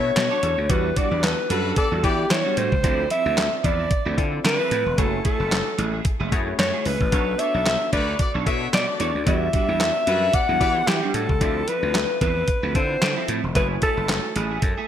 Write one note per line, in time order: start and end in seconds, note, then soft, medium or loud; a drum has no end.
0.00 0.10 B2 loud
0.00 0.48 B3 medium
0.00 0.48 D4 medium
0.00 0.11 E4 loud
0.00 0.49 F#4 medium
0.00 0.49 A4 medium
0.00 0.11 C#5 loud
0.00 0.49 C#5 medium
0.00 0.72 C#5 loud
0.00 0.11 E5 loud
0.00 muted clean electric guitar stroke medium
0.16 0.28 B2 loud
0.16 muted clean electric guitar stroke soft
0.16 snare loud
0.16 clap medium
0.16 closed hi-hat loud
0.31 0.53 A3 loud
0.31 0.41 D4 medium
0.31 0.53 F#4 loud
0.31 0.42 A4 loud
0.31 0.42 C#5 loud
0.31 0.53 D5 medium
0.42 0.55 E2 loud
0.42 0.59 D4 medium
0.42 0.57 A4 medium
0.42 0.56 C#5 medium
0.42 closed hi-hat medium
0.58 0.67 D2 medium
0.58 muted clean electric guitar stroke soft
0.69 0.91 E2 loud
0.69 0.89 G3 medium
0.69 1.48 B3 medium
0.69 0.89 D4 medium
0.69 1.48 E4 medium
0.69 1.48 F#4 medium
0.69 0.90 F#4 medium
0.69 1.48 G4 medium
0.69 0.99 B4 medium
0.69 1.48 D5 medium
0.69 kick loud
0.69 closed hi-hat loud
0.96 1.11 G3 medium
0.96 1.09 B3 medium
0.96 1.10 D4 medium
0.96 1.11 F#4 medium
0.96 1.09 G4 medium
0.96 1.09 D5 loud
0.96 1.25 D5 medium
0.96 kick medium
0.96 closed hi-hat medium
1.11 1.32 E2 loud
1.11 1.21 G3 medium
1.11 1.22 G3 soft
1.11 1.22 D4 medium
1.11 1.21 F#4 medium
1.11 1.24 G4 medium
1.11 1.21 B4 medium
1.23 1.36 A3 medium
1.23 1.36 F#4 medium
1.23 1.35 A4 loud
1.23 1.52 B4 loud
1.23 muted clean electric guitar stroke soft
1.23 snare loud
1.23 clap medium
1.23 closed hi-hat medium
1.38 muted clean electric guitar stroke soft
1.50 1.71 F#2 medium
1.50 1.64 G3 medium
1.50 1.72 G3 loud
1.50 1.64 D4 medium
1.50 1.63 F#4 loud
1.50 1.72 F#4 loud
1.50 1.77 A4 medium
1.50 1.72 B4 loud
1.50 closed hi-hat medium
1.65 1.76 G3 medium
1.65 1.76 D4 medium
1.65 1.76 F#4 medium
1.76 1.89 B3 loud
1.76 1.89 G4 loud
1.76 2.06 A4 loud
1.76 1.89 D5 loud
1.76 muted clean electric guitar stroke soft
1.76 kick loud
1.76 closed hi-hat medium
1.91 2.01 E2 medium
1.91 2.02 G3 medium
1.91 2.02 D4 medium
1.91 2.03 F#4 medium
2.03 2.25 E3 loud
2.03 2.63 B3 medium
2.03 2.25 B3 loud
2.03 2.63 E4 medium
2.03 2.63 F#4 medium
2.03 2.63 G4 medium
2.03 2.25 G4 loud
2.03 2.33 G4 loud
2.03 2.25 D5 loud
2.03 2.63 D5 medium
2.03 muted clean electric guitar stroke soft
2.03 kick loud
2.03 closed hi-hat medium
2.18 muted clean electric guitar stroke medium
2.30 2.42 E3 loud
2.30 2.59 C#5 loud
2.30 muted clean electric guitar stroke medium
2.30 snare loud
2.30 clap loud
2.30 closed hi-hat loud
2.45 2.56 G3 medium
2.45 2.56 D4 medium
2.45 2.57 F#4 loud
2.57 2.69 A2 medium
2.57 2.73 G3 medium
2.57 2.72 D4 medium
2.57 2.71 F#4 medium
2.57 3.11 C5 loud
2.57 closed hi-hat medium
2.72 2.81 C#2 medium
2.72 muted clean electric guitar stroke soft
2.72 kick medium
2.83 3.05 D2 loud
2.83 3.03 F3 medium
2.83 3.62 C4 medium
2.83 3.04 C4 medium
2.83 3.62 E4 medium
2.83 3.04 E4 loud
2.83 3.62 F4 medium
2.83 3.63 A4 medium
2.83 3.63 D5 medium
2.83 kick loud
2.83 closed hi-hat loud
3.10 3.25 F3 medium
3.10 3.25 C4 medium
3.10 3.25 E4 medium
3.10 3.67 E5 loud
3.10 closed hi-hat medium
3.25 3.47 D2 loud
3.25 3.36 F3 medium
3.25 3.36 C4 medium
3.25 3.37 F4 medium
3.38 snare loud
3.38 clap medium
3.38 closed hi-hat loud
3.52 muted clean electric guitar stroke medium
3.64 3.85 E2 loud
3.64 3.79 F3 loud
3.64 3.78 C4 loud
3.64 3.78 E4 loud
3.64 4.18 D5 loud
3.64 kick medium
3.64 closed hi-hat medium
3.79 3.89 F3 medium
3.79 3.90 C4 medium
3.79 3.90 E4 medium
3.91 muted clean electric guitar stroke soft
3.91 kick loud
3.91 closed hi-hat medium
4.05 4.15 D2 medium
4.05 4.16 F3 medium
4.05 4.17 C4 medium
4.05 4.17 E4 medium
4.17 4.39 D3 loud
4.17 4.77 C4 medium
4.17 4.77 E4 medium
4.17 4.77 F4 medium
4.17 4.77 A4 medium
4.17 4.77 D5 medium
4.17 muted clean electric guitar stroke soft
4.17 kick medium
4.17 closed hi-hat medium
4.32 muted clean electric guitar stroke medium
4.44 4.56 D3 loud
4.44 5.00 B4 loud
4.44 muted clean electric guitar stroke soft
4.44 snare loud
4.44 clap loud
4.44 closed hi-hat loud
4.59 4.70 F3 medium
4.59 4.70 C4 medium
4.59 4.71 E4 loud
4.71 4.83 A2 loud
4.71 4.87 F3 medium
4.71 4.86 C4 medium
4.71 4.85 E4 medium
4.71 closed hi-hat medium
4.86 4.95 E1 loud
4.86 muted clean electric guitar stroke soft
4.98 5.19 F#1 loud
4.98 5.77 A3 medium
4.98 5.18 A3 medium
4.98 5.77 E4 medium
4.98 5.18 E4 loud
4.98 5.77 F#4 medium
4.98 5.18 G#4 loud
4.98 5.25 A4 loud
4.98 5.77 C#5 medium
4.98 5.77 G#5 medium
4.98 kick loud
4.98 closed hi-hat loud
5.25 5.40 A3 medium
5.25 5.39 E4 medium
5.25 5.39 G#4 medium
5.25 6.02 A4 medium
5.25 kick loud
5.25 closed hi-hat medium
5.40 5.61 F#1 loud
5.40 5.50 A3 medium
5.40 5.51 E4 medium
5.40 5.52 A4 medium
5.51 muted clean electric guitar stroke soft
5.51 snare loud
5.51 clap medium
5.51 closed hi-hat medium
5.67 muted clean electric guitar stroke soft
5.78 5.99 A1 medium
5.78 5.93 A3 medium
5.78 5.93 E4 loud
5.78 5.92 G#4 loud
5.78 closed hi-hat medium
5.93 6.04 A3 medium
5.93 6.04 E4 medium
5.93 6.05 G#4 medium
6.05 muted clean electric guitar stroke medium
6.05 kick loud
6.05 closed hi-hat medium
6.20 6.29 F#1 loud
6.20 6.31 A3 medium
6.20 6.31 E4 medium
6.20 6.32 G#4 medium
6.32 6.53 F#2 loud
6.32 6.91 A3 loud
6.32 6.91 E4 medium
6.32 6.91 F#4 medium
6.32 6.92 G#4 medium
6.32 6.92 C#5 loud
6.32 muted clean electric guitar stroke soft
6.32 kick medium
6.32 closed hi-hat medium
6.47 muted clean electric guitar stroke medium
6.59 6.71 F#2 medium
6.59 6.88 C#5 loud
6.59 muted clean electric guitar stroke soft
6.59 snare loud
6.59 clap medium
6.59 closed hi-hat loud
6.73 6.84 A3 medium
6.73 6.85 E4 loud
6.73 6.85 G#4 loud
6.85 6.97 C#2 loud
6.85 7.02 A3 medium
6.85 7.00 E4 medium
6.85 6.99 G#4 medium
6.85 7.41 B4 loud
6.85 open hi-hat medium
7.00 7.10 A1 medium
7.00 muted clean electric guitar stroke soft
7.00 kick medium
7.12 7.33 B1 loud
7.12 7.91 B3 medium
7.12 7.32 D4 medium
7.12 7.91 D4 medium
7.12 7.91 F#4 medium
7.12 7.91 A4 medium
7.12 7.32 A4 medium
7.12 7.91 C#5 medium
7.12 7.32 C#5 medium
7.12 kick loud
7.12 closed hi-hat loud
7.39 7.51 A3 medium
7.39 7.54 D4 medium
7.39 7.51 F#4 medium
7.39 7.53 A4 medium
7.39 7.54 C#5 medium
7.39 7.51 D5 loud
7.39 7.92 E5 loud
7.39 closed hi-hat medium
7.54 7.75 B1 loud
7.54 7.64 F#3 medium
7.54 7.64 D4 medium
7.54 7.65 D4 soft
7.54 7.65 A4 medium
7.54 7.64 B4 medium
7.54 7.66 D5 medium
7.66 7.78 F#3 medium
7.66 7.78 D4 medium
7.66 7.78 A4 medium
7.66 muted clean electric guitar stroke soft
7.66 snare loud
7.66 clap medium
7.66 closed hi-hat medium
7.81 muted clean electric guitar stroke soft
7.92 8.14 D2 medium
7.92 8.14 F#3 loud
7.92 8.07 D4 medium
7.92 8.14 D4 loud
7.92 8.07 A4 medium
7.92 8.14 B4 loud
7.92 8.06 C#5 medium
7.92 8.43 D5 medium
7.92 kick medium
7.92 closed hi-hat medium
8.08 8.18 D4 medium
8.08 8.19 A4 medium
8.08 8.19 C#5 medium
8.19 8.32 A3 medium
8.19 8.32 F#4 medium
8.19 8.32 D5 medium
8.19 muted clean electric guitar stroke soft
8.19 kick loud
8.19 closed hi-hat medium
8.34 8.44 B1 medium
8.34 8.45 D4 medium
8.34 8.45 A4 medium
8.34 8.46 C#5 medium
8.46 8.67 B2 loud
8.46 9.05 B3 medium
8.46 9.06 D4 medium
8.46 8.68 E4 loud
8.46 9.06 F#4 medium
8.46 9.06 A4 medium
8.46 9.06 C#5 medium
8.46 8.68 C#5 loud
8.46 8.68 E5 loud
8.46 muted clean electric guitar stroke soft
8.46 kick loud
8.46 closed hi-hat medium
8.61 muted clean electric guitar stroke medium
8.73 8.85 B2 loud
8.73 8.99 D5 loud
8.73 muted clean electric guitar stroke soft
8.73 snare loud
8.73 clap loud
8.73 closed hi-hat loud
8.88 9.10 A3 loud
8.88 9.10 F#4 loud
8.88 9.10 D5 loud
8.88 muted clean electric guitar stroke medium
9.00 9.12 E2 medium
9.00 9.19 D4 medium
9.00 9.14 A4 loud
9.00 9.14 C#5 loud
9.00 9.25 D5 medium
9.00 closed hi-hat medium
9.15 9.24 D2 medium
9.15 muted clean electric guitar stroke soft
9.26 9.48 E2 loud
9.26 9.46 G3 medium
9.26 10.05 B3 medium
9.26 9.46 D4 loud
9.26 10.05 E4 medium
9.26 10.05 F#4 medium
9.26 9.47 F#4 loud
9.26 10.05 G4 medium
9.26 10.05 D5 medium
9.26 10.36 E5 loud
9.26 kick loud
9.26 closed hi-hat loud
9.53 9.68 G3 medium
9.53 9.66 B3 medium
9.53 9.68 D4 medium
9.53 9.68 F#4 medium
9.53 9.66 G4 medium
9.53 9.66 D5 medium
9.53 kick loud
9.53 closed hi-hat medium
9.68 9.90 E2 loud
9.68 9.78 G3 medium
9.68 9.79 G3 soft
9.68 9.79 D4 medium
9.68 9.78 F#4 medium
9.68 9.80 G4 medium
9.68 9.78 B4 medium
9.80 9.92 A3 medium
9.80 9.92 F#4 medium
9.80 9.92 A4 loud
9.80 muted clean electric guitar stroke soft
9.80 snare medium
9.80 clap medium
9.80 closed hi-hat medium
9.95 muted clean electric guitar stroke medium
10.07 10.28 F#2 loud
10.07 10.22 G3 medium
10.07 10.29 G3 loud
10.07 10.21 D4 medium
10.07 10.29 F#4 loud
10.07 10.21 F#4 loud
10.07 10.28 B4 loud
10.07 closed hi-hat medium
10.22 10.33 G3 medium
10.22 10.33 D4 medium
10.22 10.34 F#4 medium
10.33 10.46 B3 medium
10.33 10.46 G4 loud
10.33 10.46 D5 loud
10.33 10.89 F#5 loud
10.33 muted clean electric guitar stroke soft
10.33 kick loud
10.33 closed hi-hat medium
10.49 10.58 E2 medium
10.49 10.59 G3 medium
10.49 10.60 D4 medium
10.49 10.60 F#4 medium
10.60 10.82 E3 loud
10.60 11.20 B3 medium
10.60 10.82 B3 loud
10.60 11.20 E4 medium
10.60 11.20 F#4 medium
10.60 10.82 G4 loud
10.60 11.20 G4 medium
10.60 10.82 D5 loud
10.60 11.20 D5 medium
10.60 muted clean electric guitar stroke soft
10.60 kick loud
10.60 closed hi-hat medium
10.76 muted clean electric guitar stroke medium
10.87 10.99 E3 loud
10.87 11.16 G4 loud
10.87 muted clean electric guitar stroke soft
10.87 snare loud
10.87 clap medium
10.87 closed hi-hat loud
11.02 11.13 G3 medium
11.02 11.13 D4 loud
11.02 11.14 F#4 medium
11.14 11.26 A2 medium
11.14 11.30 G3 medium
11.14 11.29 D4 medium
11.14 11.28 F#4 medium
11.14 11.70 A4 loud
11.14 closed hi-hat medium
11.29 11.39 C#2 medium
11.29 muted clean electric guitar stroke medium
11.29 kick medium
11.41 11.62 D2 loud
11.41 11.61 F3 medium
11.41 12.19 C4 medium
11.41 11.61 C4 medium
11.41 12.20 E4 medium
11.41 11.61 E4 loud
11.41 12.20 F4 medium
11.41 12.20 A4 medium
11.41 12.20 D5 medium
11.41 kick loud
11.41 closed hi-hat loud
11.68 11.83 F3 medium
11.68 11.82 C4 medium
11.68 11.82 E4 medium
11.68 12.21 B4 loud
11.68 closed hi-hat medium
11.83 12.04 D2 loud
11.83 11.93 F3 medium
11.83 11.94 C4 medium
11.83 11.95 F4 medium
11.95 muted clean electric guitar stroke soft
11.95 snare loud
11.95 clap medium
11.95 closed hi-hat medium
12.10 muted clean electric guitar stroke soft
12.21 12.42 E2 loud
12.21 12.36 F3 loud
12.21 12.36 C4 loud
12.21 12.35 E4 loud
12.21 12.77 B4 loud
12.21 kick medium
12.21 closed hi-hat medium
12.36 12.47 F3 medium
12.36 12.47 C4 medium
12.36 12.48 E4 medium
12.48 muted clean electric guitar stroke soft
12.48 kick loud
12.48 closed hi-hat medium
12.63 12.72 D2 loud
12.63 12.74 F3 medium
12.63 12.74 C4 medium
12.63 12.74 E4 medium
12.74 12.96 D3 loud
12.74 13.34 C4 medium
12.74 13.34 E4 medium
12.74 13.34 F4 medium
12.74 13.34 A4 medium
12.74 13.35 C5 medium
12.74 13.29 C5 loud
12.74 muted clean electric guitar stroke soft
12.74 kick loud
12.74 closed hi-hat medium
12.90 muted clean electric guitar stroke soft
13.02 13.14 D3 loud
13.02 muted clean electric guitar stroke soft
13.02 snare loud
13.02 clap loud
13.02 closed hi-hat loud
13.16 13.27 F3 medium
13.16 13.28 C4 medium
13.16 13.28 E4 loud
13.28 13.40 A2 loud
13.28 13.44 F3 medium
13.28 13.43 C4 medium
13.28 13.42 E4 medium
13.28 closed hi-hat medium
13.43 13.53 E1 loud
13.43 muted clean electric guitar stroke soft
13.55 13.76 F#1 loud
13.55 14.34 A3 medium
13.55 13.75 A3 medium
13.55 14.34 E4 medium
13.55 13.75 E4 medium
13.55 14.34 F#4 medium
13.55 13.75 G#4 medium
13.55 13.68 B4 loud
13.55 14.34 C#5 medium
13.55 14.34 G#5 medium
13.55 kick loud
13.55 closed hi-hat loud
13.82 13.97 A3 medium
13.82 13.96 E4 medium
13.82 13.97 G#4 medium
13.82 14.38 A4 loud
13.82 kick loud
13.82 closed hi-hat medium
13.97 14.18 F#1 loud
13.97 14.08 A3 medium
13.97 14.08 E4 soft
13.97 14.09 A4 medium
14.09 muted clean electric guitar stroke soft
14.09 snare loud
14.09 clap medium
14.09 closed hi-hat loud
14.24 muted clean electric guitar stroke soft
14.36 14.57 A1 medium
14.36 14.50 A3 medium
14.36 14.50 E4 medium
14.36 14.64 G#4 medium
14.36 14.49 G#4 medium
14.36 closed hi-hat medium
14.51 14.61 A3 medium
14.51 14.62 E4 medium
14.51 14.62 G#4 medium
14.62 14.74 F#2 loud
14.62 14.88 A4 medium
14.62 muted clean electric guitar stroke medium
14.62 kick loud
14.62 closed hi-hat medium
14.77 14.88 A3 medium
14.77 14.88 E4 medium
14.77 14.88 G#4 medium